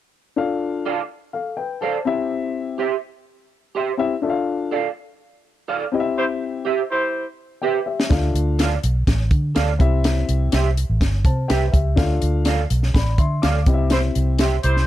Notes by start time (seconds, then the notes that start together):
0.36 D4 F4 A4 F5
0.85 A4 D5 F5
1.33 A4 F5
1.57 B4 G5
1.81 A4 C5 D5 F5 A5
2.05 C4 E4 G4 E5
2.78 G4 C5 E5
3.75 G4 C5 E5
3.97 C4 E4 G4 E5
4.22 D4 F4 A4 E5
4.30 F5
4.71 A4 D5 F5
5.68 A4 D5 F5
5.92 C4 E4 G4 D#5
6.00 E5
6.17 E4 G4 C5
6.65 G4 C5 E5
6.90 E4 G4 C5
7.62 G4 B4 C5 E5 G5
7.86 G4 E5
8.00 snare
8.10 D2 D4 F4 A4 F5, kick, snare, closed hi-hat
8.34 D2, closed hi-hat
8.59 A4 D5 F5, snare, closed hi-hat
8.83 B1, closed hi-hat
9.07 A1, kick, snare, closed hi-hat
9.31 D3, kick, closed hi-hat
9.55 D2 A4 D5 F5, snare, closed hi-hat
9.79 C2 C4 E4 G4 E5, kick, closed hi-hat
10.04 snare, closed hi-hat
10.29 C2, closed hi-hat
10.52 C2 G4 C5 E5, snare, closed hi-hat
10.77 closed hi-hat
10.90 A1
11.01 G1, kick, snare, closed hi-hat
11.25 C3 C5 A5, kick, closed hi-hat
11.48 C2 G4 B4 C5 E5 G5, snare, closed hi-hat
11.72 C#2 G4 E5, kick, closed hi-hat
11.96 D2 D4 F4 A4 F5, kick, snare, closed hi-hat
12.22 D2, closed hi-hat
12.45 A4 D5 F5, snare, closed hi-hat
12.70 B1, closed hi-hat
12.83 snare
12.94 A1 D5 B5, kick, snare, closed hi-hat
13.18 D3 E5 C6, kick, closed hi-hat
13.42 D2 A4 D5 F5 D6, snare, closed hi-hat
13.66 C2 C4 E4 G4 D#5, kick, closed hi-hat
13.74 E5
13.90 E4 G4 C5, snare, closed hi-hat
14.15 C2, closed hi-hat
14.39 G4 C5 E5, snare, closed hi-hat
14.63 C2 E4 G4 C5, closed hi-hat
14.77 snare